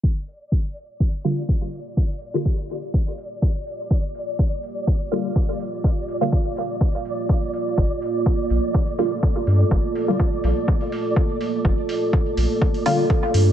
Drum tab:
HH |--o---o--oo---o-|--o---o--oo---o-|--o---o--oo---o-|--o---o--oo---o-|
BD |o---o---o---o---|o---o---o---o---|o---o---o---o---|o---o---o---o---|

HH |--o---o--oo---o-|--o---o--oo---o-|--o---o--oo---o-|
BD |o---o---o---o---|o---o---o---o---|o---o---o---o---|